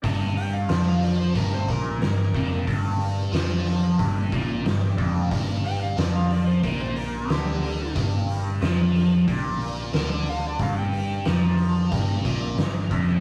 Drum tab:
HH |oooooooo|oooooooo|oooooooo|oooooooo|
SD |--o---o-|--o---o-|--o---o-|--o---o-|
BD |o---oo-o|o---oo-o|o---o---|o---o---|

HH |oooooooo|
SD |--o---o-|
BD |o---oo-o|